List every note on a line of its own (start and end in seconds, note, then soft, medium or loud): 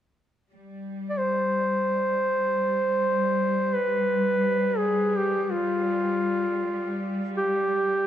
0.52 8.07 G3 soft
1.10 1.20 D5 medium
1.19 3.76 C5 medium
3.75 4.79 B4 medium
4.78 5.19 G#4 medium
5.17 5.44 G4 medium
5.44 5.53 G4 soft
5.52 7.05 F4 medium
7.37 8.07 G4 medium